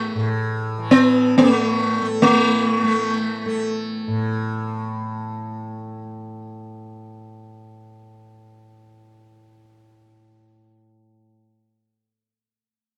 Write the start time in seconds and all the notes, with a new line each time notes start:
Already playing: A2 E3 A3
0.15 A2
0.78 E3
0.91 B3
1.38 A3
2.01 A3
2.22 E3 A3
2.83 A3
3.46 A3
4.08 A2